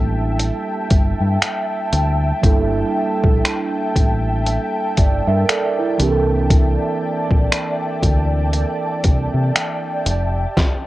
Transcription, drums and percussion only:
0.40 closed hi-hat
0.90 kick, closed hi-hat
1.42 finger snap, closed hi-hat
1.93 closed hi-hat
2.43 kick, closed hi-hat
3.24 kick
3.45 finger snap, closed hi-hat
3.96 kick, closed hi-hat
4.46 closed hi-hat
4.97 kick, closed hi-hat
5.49 finger snap, closed hi-hat
6.00 closed hi-hat
6.50 kick, closed hi-hat
7.31 kick
7.52 finger snap, closed hi-hat
8.03 kick, closed hi-hat
8.53 closed hi-hat
9.04 kick, closed hi-hat
9.56 finger snap, closed hi-hat
10.06 closed hi-hat
10.57 kick, snare

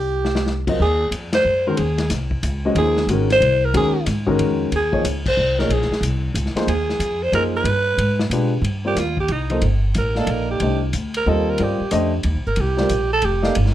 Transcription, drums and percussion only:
0.25 snare
0.35 snare
0.46 snare
0.67 kick, crash
1.12 hi-hat pedal, ride
1.33 snare, ride
1.77 ride
1.98 snare, ride
2.10 snare, hi-hat pedal, ride
2.31 kick
2.43 hi-hat pedal, ride
2.76 ride
2.97 snare
3.09 hi-hat pedal, ride
3.30 snare, ride
3.42 ride
3.74 ride
4.06 snare, hi-hat pedal, ride
4.27 kick
4.39 ride
4.72 ride
4.93 kick
5.05 hi-hat pedal, ride
5.26 kick, crash
5.59 snare
5.70 ride
5.82 snare
5.92 snare
6.03 hi-hat pedal, ride
6.35 hi-hat pedal, ride
6.46 snare
6.57 snare, ride
6.68 ride
6.89 snare
7.00 hi-hat pedal, ride
7.33 ride
7.65 ride
7.98 ride
8.19 snare
8.31 hi-hat pedal, ride
8.64 ride
8.96 snare, hi-hat pedal, ride
9.17 kick
9.28 ride
9.50 ride
9.62 ride
9.94 hi-hat pedal, ride
10.15 snare
10.27 ride
10.60 ride
10.93 hi-hat pedal, ride
11.14 ride
11.58 ride
11.91 hi-hat pedal, ride
12.23 ride
12.56 ride
12.77 snare
12.89 hi-hat pedal, ride
13.22 ride
13.43 snare
13.55 ride
13.66 snare

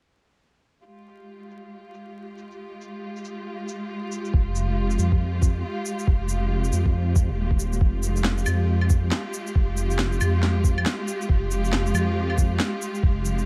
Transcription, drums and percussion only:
1.07 shaker
1.42 shaker
1.51 shaker
1.94 shaker
2.38 shaker
2.51 shaker
2.81 shaker
3.16 shaker
3.25 shaker
3.68 shaker
4.12 shaker
4.25 shaker
4.34 kick
4.55 shaker
4.90 shaker
4.99 shaker
5.12 kick
5.42 kick, shaker
5.86 shaker
5.99 shaker
6.07 kick
6.29 shaker
6.64 shaker
6.73 shaker
6.86 kick
7.16 kick, shaker
7.51 kick
7.59 shaker
7.73 shaker
7.81 kick
8.03 shaker
8.16 shaker
8.24 snare
8.38 shaker
8.46 claves, shaker
8.81 claves
8.90 kick, shaker
9.12 snare
9.34 shaker
9.47 shaker
9.55 kick
9.77 shaker
9.90 shaker
9.99 snare
10.12 shaker
10.21 claves, shaker
10.43 snare
10.64 kick, shaker
10.78 claves
10.86 snare
11.08 shaker
11.21 shaker
11.29 kick
11.51 shaker
11.65 shaker
11.73 snare
11.86 shaker
11.95 claves, shaker
12.30 claves
12.38 kick, shaker
12.60 snare
12.82 shaker
12.95 shaker
13.03 kick
13.25 shaker
13.38 shaker

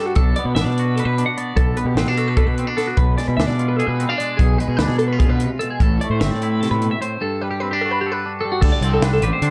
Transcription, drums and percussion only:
0.15 kick, closed hi-hat
0.36 closed hi-hat
0.56 snare, closed hi-hat
0.78 closed hi-hat
0.98 closed hi-hat
1.18 closed hi-hat
1.38 closed hi-hat
1.57 kick, closed hi-hat
1.77 closed hi-hat
1.97 snare, closed hi-hat
2.17 closed hi-hat
2.37 kick, closed hi-hat
2.58 closed hi-hat
2.78 snare, closed hi-hat
2.97 kick, closed hi-hat
3.18 snare, closed hi-hat
3.40 snare, closed hi-hat
3.59 closed hi-hat
3.80 closed hi-hat
4.00 closed hi-hat
4.20 closed hi-hat
4.39 kick, closed hi-hat
4.60 closed hi-hat
4.79 snare, closed hi-hat
4.99 closed hi-hat
5.20 kick, closed hi-hat
5.40 closed hi-hat
5.61 closed hi-hat
5.80 kick, closed hi-hat
6.01 closed hi-hat
6.21 snare, closed hi-hat
6.42 closed hi-hat
6.63 snare, closed hi-hat
6.82 closed hi-hat
7.02 closed hi-hat
8.62 kick, crash
8.82 closed hi-hat
9.02 snare, closed hi-hat
9.22 closed hi-hat
9.42 closed hi-hat

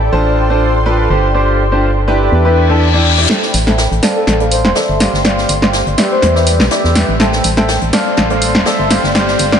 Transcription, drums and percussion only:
3.30 snare, closed hi-hat
3.42 snare
3.54 closed hi-hat, open hi-hat
3.67 snare, closed hi-hat
3.78 snare, closed hi-hat
3.92 closed hi-hat
4.03 snare, closed hi-hat, open hi-hat
4.27 snare, closed hi-hat
4.40 closed hi-hat
4.52 closed hi-hat, open hi-hat
4.65 snare
4.75 snare, closed hi-hat
5.00 snare, closed hi-hat, open hi-hat
5.14 snare
5.24 snare, closed hi-hat
5.38 snare
5.49 closed hi-hat, open hi-hat
5.62 snare, closed hi-hat
5.73 snare, closed hi-hat
5.87 closed hi-hat
5.98 snare, closed hi-hat, open hi-hat
6.22 snare, closed hi-hat
6.35 snare
6.46 snare, closed hi-hat, open hi-hat
6.60 snare
6.71 snare, closed hi-hat
6.84 snare
6.95 snare, closed hi-hat, open hi-hat
7.20 snare, closed hi-hat
7.32 snare
7.44 closed hi-hat, open hi-hat
7.57 snare, closed hi-hat
7.68 snare, closed hi-hat
7.81 closed hi-hat
7.93 snare, closed hi-hat, open hi-hat
8.17 snare, closed hi-hat
8.30 closed hi-hat
8.42 closed hi-hat, open hi-hat
8.55 snare
8.66 snare, closed hi-hat
8.91 snare, closed hi-hat, open hi-hat
9.04 snare
9.15 snare, closed hi-hat
9.28 snare
9.39 closed hi-hat, open hi-hat
9.52 snare, closed hi-hat

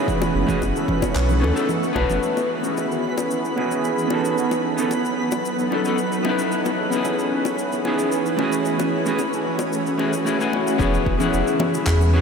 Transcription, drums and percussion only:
0.08 kick, low conga, shaker
0.22 high bongo, shaker
0.49 kick, low conga, shaker
0.62 high bongo, shaker
0.76 shaker
0.88 kick, low conga
1.02 kick, high bongo, shaker
1.16 clap, shaker
1.29 low conga, shaker
1.44 high bongo
1.57 shaker
1.69 low conga, shaker
1.83 shaker
1.96 kick, high bongo
2.10 low conga, shaker
2.23 shaker
2.37 high bongo, shaker
2.64 shaker
2.77 high bongo, shaker
2.91 shaker
3.18 high bongo, shaker
3.31 shaker
3.45 shaker
3.58 high bongo
3.71 shaker
3.84 shaker
3.98 shaker
4.10 high bongo
4.25 shaker
4.38 shaker
4.51 high bongo, shaker
4.78 shaker
4.91 high bongo, shaker
5.05 shaker
5.32 high bongo, shaker
5.45 shaker
5.59 shaker
5.72 high bongo
5.85 shaker
5.98 shaker
6.12 shaker
6.25 high bongo
6.39 shaker
6.52 shaker
6.65 high bongo, shaker
6.92 shaker
7.05 high bongo, shaker
7.19 shaker
7.45 high bongo, shaker
7.59 shaker
7.72 shaker
7.85 high bongo
7.99 shaker
8.12 shaker
8.26 shaker
8.39 high bongo
8.52 shaker
8.65 shaker
8.79 high bongo, shaker
9.06 shaker
9.19 high bongo, shaker
9.33 shaker
9.59 high bongo, shaker
9.73 shaker
9.86 shaker
9.99 high bongo
10.13 shaker
10.27 shaker
10.41 shaker
10.53 high bongo
10.67 shaker
10.80 kick, low conga, shaker
10.94 shaker
11.06 kick
11.20 low conga, shaker
11.34 shaker
11.47 shaker
11.60 high bongo, low conga
11.74 shaker
11.87 kick, clap, shaker
12.01 low conga, shaker

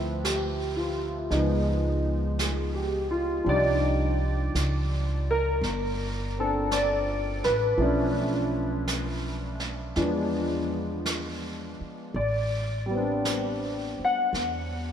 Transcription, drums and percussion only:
0.25 brush sweep, snare, hi-hat pedal
1.31 brush sweep, snare
2.39 brush sweep, snare, hi-hat pedal
3.47 brush sweep
4.55 brush sweep, snare, hi-hat pedal
5.63 brush sweep, snare
6.71 brush sweep, snare, hi-hat pedal
7.44 snare
7.80 brush sweep
8.88 brush sweep, snare, hi-hat pedal
9.60 snare
9.96 brush sweep, snare
11.06 brush sweep, snare, hi-hat pedal
12.16 brush sweep
13.25 brush sweep, snare, hi-hat pedal
14.34 brush sweep, snare

